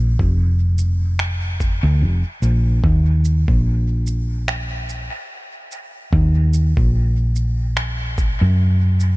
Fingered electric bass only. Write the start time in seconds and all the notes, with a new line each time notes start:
Already playing: A#1
0.19 F1
1.83 D2
2.01 F1
2.42 A#1
2.84 D#2
3.48 A#1
6.13 D#2
6.77 A#1
8.41 F#2